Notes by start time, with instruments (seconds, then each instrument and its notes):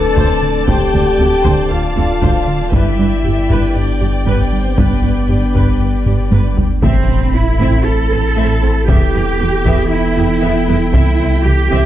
Already playing: sub bass D1, synth drone A3 C4 D4 A4, french horn section A4, grand piano B4, viola section D5, violin section A5
0.16 cello section D2, analog synth bass D2, double bass section D2, synth arpeggio sound D3, viola section C5, taiko
0.43 analog synth bass D3
0.67 double bass section D2, cello section D2, analog synth bass D2, synth arpeggio sound D3, french horn section G4, viola section C5, violin section G5, taiko
0.94 cello section D2, double bass section D2, analog synth bass D3, synth arpeggio sound A3, viola section C5
1.19 analog synth bass D2, cello section D2, double bass section D2, synth arpeggio sound C4, viola section A4
1.45 cello section D2, analog synth bass D2, double bass section D2, synth arpeggio sound D3, viola section C5, taiko
1.69 analog synth bass D2, french horn section F4, grand piano A4, violin section F5
1.96 analog synth bass D2, cello section D2, double bass section D2, synth arpeggio sound C4, viola section A4
2.21 analog synth bass D2, double bass section D2, cello section D2, synth arpeggio sound D3, viola section C5, taiko
2.47 analog synth bass D3
2.72 sub bass G1, double bass section G1, cello section G2, analog synth bass G2, synth arpeggio sound G3, synth drone B3 D4 G4 B4, french horn section E4, viola section B4 D5, violin section E5 G5, taiko
2.99 double bass section G1, cello section G2, analog synth bass G3, synth arpeggio sound D4, viola section B4
3.24 double bass section G1, analog synth bass G2, cello section G2, synth arpeggio sound G4, viola section G4
3.50 double bass section G1, analog synth bass G2, cello section G2, synth arpeggio sound G3, viola section B4, taiko
3.76 analog synth bass G2, french horn section D4, violin section D5
4.01 double bass section G1, cello section G2, analog synth bass G2, synth arpeggio sound G4, viola section G4
4.26 double bass section G1, analog synth bass G2, cello section G2, synth arpeggio sound G3, french horn section B3, violin section B4, viola section B4, taiko
4.45 french horn section D4, violin section D5
4.53 analog synth bass G3
4.62 french horn section C4, violin section C5
4.78 double bass section G1, analog synth bass G2, cello section G2, synth arpeggio sound G3, french horn section B3, violin section B4, viola section B4, taiko
5.03 double bass section G1, cello section G2, analog synth bass G3, synth arpeggio sound D4, viola section B4
5.28 double bass section G1, analog synth bass G2, cello section G2, grand piano D4 D5, synth arpeggio sound G4, viola section G4
5.55 double bass section G1, analog synth bass G2, cello section G2, synth arpeggio sound G3, viola section B4, taiko
5.81 analog synth bass G2
6.06 double bass section G1, analog synth bass G2, cello section G2, synth arpeggio sound G4, viola section G4, taiko low-mid
6.31 double bass section G1, analog synth bass G2, cello section G2, synth arpeggio sound G3, viola section B4, taiko high
6.57 analog synth bass G3, taiko low
6.83 sub bass A1, double bass section A1, synth arpeggio sound A3, synth drone A3 C4 E4 A4, viola section C4, cello section C4, violin section E5 B5, taiko, impact
7.09 double bass section A1, synth arpeggio sound C4, viola section C4, violin section C5
7.34 double bass section A1, viola section C4, synth arpeggio sound E4, cello section E4, violin section B4
7.60 double bass section A1, synth arpeggio sound A3, grand piano C4 C5, viola section C4, violin section E5, taiko
7.86 cello section A4
8.11 double bass section A1, viola section C4, synth arpeggio sound A4, violin section B4
8.37 double bass section A1, synth arpeggio sound A3, viola section C4, violin section E5
8.63 double bass section A1, synth arpeggio sound C4, viola section C4, violin section C5
8.88 sub bass E1, double bass section E2, synth drone E3 B3, synth arpeggio sound E3, viola section B3, cello section G4, violin section E5 G5, taiko
9.14 double bass section E2, synth arpeggio sound G3, viola section B3, violin section B4
9.39 double bass section E2, viola section B3, synth arpeggio sound B3, violin section G4
9.65 double bass section E2, synth arpeggio sound E3, viola section B3, violin section E5, taiko
9.90 cello section E4
10.16 double bass section E2, viola section B3, synth arpeggio sound E4, violin section G4
10.42 double bass section E2, synth arpeggio sound E3, viola section B3, violin section E5
10.68 double bass section E2, synth arpeggio sound G3, viola section B3, violin section B4
10.93 sub bass C2, double bass section C2, synth arpeggio sound C3, synth drone G3 G4, viola section C4, cello section E4, violin section E5, taiko
11.19 double bass section C2, synth arpeggio sound E3, viola section C4, violin section C5
11.44 double bass section C2, synth arpeggio sound G3, viola section C4, cello section G4, violin section G4
11.70 double bass section C2, synth arpeggio sound C3, viola section C4, violin section E5, taiko